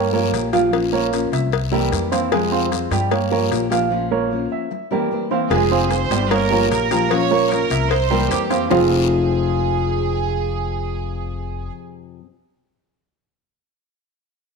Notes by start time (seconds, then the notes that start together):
Already playing: G2 C#5
0.13 F3 A#3 F4 G4 A#4 C#5
0.32 A#1 F3 A#3 F4 G4, cowbell, short guiro
0.53 F3 A#3 F4 G4 F5, cowbell, short guiro
0.72 F3 A#3 C#4 F4, cowbell, long guiro
0.93 A#3 A#4 C#5
1.12 F3 A#3 C#4 F4, cowbell, short guiro
1.32 C2 E5, cowbell, short guiro
1.52 muted nylon-string guitar stroke, cowbell, long guiro
1.71 E3 G3 A#3 C4 E4 G4 A#4
1.91 F2 E3 A#3 C4 E4, cowbell, short guiro
2.12 E3 A#3 C4 E4 C5 F5, cowbell, short guiro
2.32 C3 F3 G#3 C4 F4 G#4 G#5, cowbell, long guiro
2.52 C4 C5 F5
2.71 F3 G#3 C4 F4, cowbell, short guiro
2.91 G2 G3 G4 G5, cowbell, short guiro
3.11 A#3 A#4 C#5, muted nylon-string guitar stroke, cowbell, long guiro
3.31 F3 A#3 F4 G4 A#4 C#5
3.50 A#1 F3 A#3 F4 G4, cowbell, short guiro
3.70 F3 A#3 F4 G4 F5, cowbell, short guiro
3.90 F3 A#3 C#4 F4
4.11 A#3 A#4 C#5
4.31 F3 A#3 C#4 F4
4.52 E5
4.71 muted nylon-string guitar stroke
4.91 E3 G3 A#3 C4 E4 G4 A#4
5.11 E3 A#3 C4 E4
5.31 E3 A#3 C4 E4 C5 F5
5.50 F1 C3 F3 G#3 C4 F4 G#4 G#5, cowbell, long guiro
5.71 C4 C5 F5
5.90 F3 G#3 C4 F4 C5, cowbell, short guiro
6.10 G1 G3 G4 G5, cowbell, short guiro
6.31 A#3 A#4 C#5, muted nylon-string guitar stroke, cowbell, long guiro
6.50 F3 A#3 F4 G4 A#4 C#5
6.70 A#1 F3 A#3 F4 G4 A#4, cowbell, short guiro
6.91 F3 A#3 F4 G4 F5, cowbell, short guiro
7.10 F3 A#3 C#4 F4 C#5, cowbell, long guiro
7.31 A#3 A#4 C#5
7.50 F3 A#3 C#4 F4 A#4, cowbell, short guiro
7.70 C2 E5, cowbell, short guiro
7.90 C5, muted nylon-string guitar stroke, cowbell, long guiro
8.10 E3 G3 A#3 C4 E4 G4 A#4
8.30 F2 E3 A#3 C4 E4 G4, cowbell, short guiro
8.50 E3 A#3 C4 E4 C5 F5, cowbell, short guiro
8.69 F1 F2 C3 F3 G#3 C4 F4 G#4 C5 F5, low bongo, long guiro